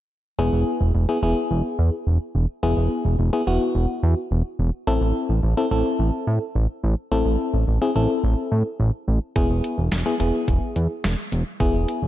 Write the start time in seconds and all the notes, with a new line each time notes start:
0.39 E1 B3 E4 G#4
0.53 E1
0.81 E1
0.95 E1
1.09 B3 E4 G#4
1.23 E1 B3 E4 G#4
1.51 E1
1.79 E2
2.07 E1
2.35 E1
2.63 E1 B3 E4 G#4
2.77 E1
3.05 E1
3.19 E1
3.33 B3 E4 G#4
3.47 E1 B3 E4 F#4
3.75 E1
4.03 E2
4.31 E1
4.59 E1
4.87 A1 C4 E4 A4
5.01 A1
5.29 A1
5.43 A1
5.57 C4 E4 A4
5.71 A1 C4 E4 A4
5.99 A1
6.27 A2
6.55 A1
6.83 A1
7.12 A1 C4 E4 A4
7.26 A1
7.54 A1
7.68 A1
7.82 C4 E4 G#4
7.96 A1 C4 E4 A4
8.24 A1
8.52 A2
8.80 A1
9.08 A1
9.36 E1 B3 E4 G#4, kick, closed hi-hat
9.50 E1
9.64 closed hi-hat
9.78 E1
9.92 E1, snare, closed hi-hat
10.06 B3 E4 G#4
10.20 E1 B3 E4 G#4, closed hi-hat
10.48 E1, kick, closed hi-hat
10.76 E2, closed hi-hat
11.04 E1, snare, closed hi-hat
11.32 E1, closed hi-hat
11.60 E1 B3 E4 G#4, kick, closed hi-hat
11.74 E1
11.88 closed hi-hat
12.02 E1